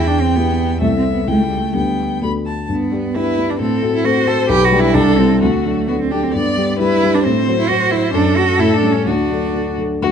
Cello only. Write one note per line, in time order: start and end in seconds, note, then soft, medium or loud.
0.07 0.23 D4 medium
0.22 0.37 C4 medium
0.36 0.80 B3 medium
0.81 0.96 A3 medium
0.97 1.03 C4 medium
1.12 1.27 B3 medium
1.27 1.45 A3 medium
1.43 1.61 G3 medium
1.59 1.75 A3 medium
1.74 2.22 B3 medium
2.69 3.17 B3 medium
3.15 3.51 E4 medium
3.50 3.59 D4 medium
3.60 3.93 C4 medium
3.94 4.06 E4 medium
4.05 4.29 F#4 medium
4.27 4.49 A4 medium
4.49 4.66 G4 loud
4.65 4.81 F#4 medium
4.80 4.96 E4 medium
4.94 5.20 D4 medium
5.18 5.44 C4 medium
5.42 5.89 A3 medium
5.88 5.99 B3 medium
6.00 6.13 C4 medium
6.11 6.25 D4 medium
6.23 6.35 C4 medium
6.34 6.79 B3 medium
6.79 7.16 E4 medium
7.15 7.27 D4 medium
7.25 7.58 C4 medium
7.59 7.70 E4 medium
7.68 7.93 F#4 medium
7.91 8.13 E4 medium
8.14 8.38 D4 medium
8.36 8.61 F#4 medium
8.59 8.77 E4 medium
8.75 8.93 D4 medium
8.92 9.08 C#4 medium
9.07 9.78 D4 medium
10.02 10.12 F#3 soft